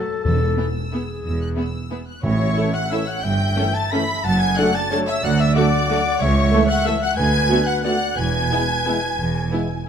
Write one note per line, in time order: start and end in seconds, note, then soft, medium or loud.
0.00 0.23 A4 medium
0.00 0.26 A5 medium
0.24 0.53 E1 medium
0.24 0.72 E2 medium
0.24 0.53 E2 medium
0.24 0.67 A4 loud
0.24 0.56 E6 medium
0.57 0.66 B3 medium
0.57 0.65 E4 medium
0.57 0.66 G#4 medium
0.57 1.21 E6 medium
0.92 1.02 B3 medium
0.92 1.00 E4 medium
0.92 1.87 G#4 medium
0.92 1.01 G#4 medium
1.25 1.52 E1 medium
1.25 1.52 E2 medium
1.25 1.41 E6 medium
1.41 1.48 F#6 medium
1.56 1.65 B3 medium
1.56 1.64 E4 medium
1.56 1.65 G#4 medium
1.56 2.08 E6 medium
1.90 1.99 B3 medium
1.90 1.98 E4 medium
1.90 1.98 G#4 medium
2.07 2.23 F#6 medium
2.23 2.52 A1 medium
2.23 2.71 A2 loud
2.23 2.52 A2 medium
2.23 2.70 C#5 medium
2.23 2.71 C#5 medium
2.23 2.75 C#5 medium
2.23 2.88 E5 medium
2.23 2.71 C#6 loud
2.56 2.70 E3 medium
2.56 2.70 A3 medium
2.56 2.69 C#4 medium
2.56 2.64 E4 medium
2.56 2.69 A4 medium
2.56 2.64 A4 medium
2.74 2.91 F#5 medium
2.74 2.92 F#5 medium
2.74 2.91 F#6 medium
2.90 3.03 E3 medium
2.90 3.02 A3 medium
2.90 3.03 C#4 medium
2.90 3.00 E4 medium
2.90 3.03 A4 medium
2.90 3.00 A4 medium
2.90 3.25 C#5 medium
2.90 3.07 E5 medium
2.90 3.09 E5 medium
2.90 3.08 E5 medium
2.90 3.08 E6 medium
3.06 3.23 F#5 medium
3.06 3.25 F#5 medium
3.06 3.24 F#6 loud
3.22 3.51 G1 medium
3.22 3.52 G2 medium
3.22 3.90 E5 medium
3.22 3.74 G5 medium
3.22 3.76 G5 medium
3.22 3.75 G5 loud
3.22 3.75 G6 loud
3.56 3.71 E3 medium
3.56 3.71 A3 medium
3.56 3.64 C#4 medium
3.56 3.69 C#4 medium
3.56 3.65 A4 medium
3.56 3.69 A4 medium
3.73 3.91 A5 loud
3.73 3.93 A5 medium
3.73 3.92 A5 medium
3.73 3.92 A6 loud
3.91 4.05 E3 medium
3.91 4.05 A3 medium
3.91 4.04 C#4 medium
3.91 4.00 C#4 medium
3.91 4.01 A4 medium
3.91 4.04 A4 medium
3.91 4.26 E5 medium
3.91 4.23 B5 loud
3.91 4.25 B5 loud
3.91 4.24 B5 medium
3.91 4.25 B6 loud
4.23 4.52 F#1 loud
4.23 4.52 F#2 medium
4.23 4.58 F#5 loud
4.23 4.39 A5 loud
4.23 4.41 A5 loud
4.23 4.40 A5 loud
4.23 4.41 A6 loud
4.40 4.57 G#5 medium
4.40 4.57 G#5 loud
4.40 4.57 G#5 medium
4.40 4.57 G#6 loud
4.57 4.72 F#3 medium
4.57 4.71 A3 medium
4.57 4.66 D4 medium
4.57 4.70 D4 medium
4.57 4.66 A4 medium
4.57 4.71 A4 medium
4.57 4.90 D5 medium
4.57 4.74 F#5 loud
4.57 4.75 F#5 loud
4.57 4.77 F#5 loud
4.57 4.75 F#6 loud
4.74 4.89 A5 loud
4.74 4.91 A5 loud
4.74 4.91 A6 loud
4.90 5.04 F#3 medium
4.90 5.05 A3 medium
4.90 5.03 D4 medium
4.90 5.00 D4 medium
4.90 5.03 A4 medium
4.90 5.00 A4 medium
4.90 5.24 C#5 loud
4.90 4.97 A5 loud
4.90 4.99 A5 loud
4.90 5.08 A5 loud
4.90 4.99 A6 loud
5.07 5.13 E5 loud
5.07 5.24 E5 loud
5.07 5.23 E5 loud
5.07 5.24 E6 loud
5.23 5.50 D2 loud
5.23 5.50 D2 medium
5.23 5.57 D5 loud
5.23 5.39 F#5 loud
5.23 5.39 F#5 medium
5.23 5.40 F#5 medium
5.23 5.39 F#6 loud
5.38 5.55 E5 loud
5.38 5.58 E5 loud
5.38 5.56 E5 medium
5.38 5.56 E6 loud
5.55 5.69 F#3 medium
5.55 5.64 A3 medium
5.55 5.69 A3 medium
5.55 5.68 D4 medium
5.55 5.64 F#4 medium
5.55 5.68 A4 medium
5.55 6.20 D5 loud
5.55 6.22 D5 loud
5.55 5.89 F#5 loud
5.55 6.19 D6 loud
5.89 6.01 F#3 medium
5.89 6.01 A3 medium
5.89 5.98 A3 medium
5.89 6.01 D4 medium
5.89 5.98 F#4 medium
5.89 6.01 A4 medium
5.89 6.20 F#5 loud
6.20 6.47 C#2 loud
6.20 6.71 C#5 loud
6.20 6.70 C#5 loud
6.20 6.69 C#5 loud
6.20 7.16 E5 loud
6.20 6.69 C#6 loud
6.51 6.65 E3 medium
6.51 6.64 A3 medium
6.51 6.60 A3 medium
6.51 6.65 A3 medium
6.51 6.64 A4 medium
6.51 6.61 A4 medium
6.68 6.86 F#5 loud
6.68 6.88 F#5 loud
6.68 6.85 F#6 loud
6.85 6.97 E3 medium
6.85 6.97 A3 medium
6.85 6.94 A3 medium
6.85 6.96 A4 medium
6.85 6.94 A4 medium
6.85 7.02 E5 loud
6.85 7.02 E5 medium
6.85 7.02 E6 loud
7.01 7.17 F#5 loud
7.01 7.19 F#5 loud
7.01 7.18 F#5 medium
7.01 7.16 F#6 loud
7.16 7.44 D2 loud
7.16 7.44 D2 medium
7.16 7.82 B4 loud
7.16 7.65 G#5 loud
7.16 7.68 G#5 loud
7.16 7.67 G#5 loud
7.16 7.66 G#6 loud
7.49 7.62 D3 medium
7.49 7.63 A3 medium
7.49 7.61 B3 medium
7.49 7.58 B3 medium
7.49 7.62 F#4 medium
7.49 7.58 F#4 medium
7.66 7.72 F#5 medium
7.66 7.82 F#5 loud
7.66 7.83 F#5 medium
7.66 7.81 F#6 loud
7.83 7.96 D3 medium
7.83 7.96 A3 medium
7.83 7.92 B3 medium
7.83 7.96 B3 medium
7.83 7.92 F#4 medium
7.83 7.96 F#4 medium
7.83 8.18 D5 medium
7.83 8.19 F#5 loud
7.83 8.16 F#5 medium
7.83 8.17 F#5 medium
7.83 8.16 F#6 loud
8.16 8.45 E1 medium
8.16 8.45 E2 medium
8.16 9.89 B4 medium
8.16 9.89 G#5 loud
8.16 9.89 G#5 medium
8.16 9.89 G#6 loud
8.50 8.64 E3 medium
8.50 8.64 G#3 medium
8.50 8.63 B3 medium
8.50 8.59 B3 medium
8.50 8.63 E4 medium
8.50 8.59 E4 medium
8.85 8.97 E3 medium
8.85 8.98 G#3 medium
8.85 8.94 B3 medium
8.85 8.99 B3 medium
8.85 8.94 E4 medium
8.85 8.99 E4 medium
9.18 9.46 E1 medium
9.18 9.46 E2 medium
9.52 9.66 E3 medium
9.52 9.66 G#3 medium
9.52 9.60 B3 medium
9.52 9.66 B3 medium
9.52 9.60 E4 medium
9.52 9.65 E4 medium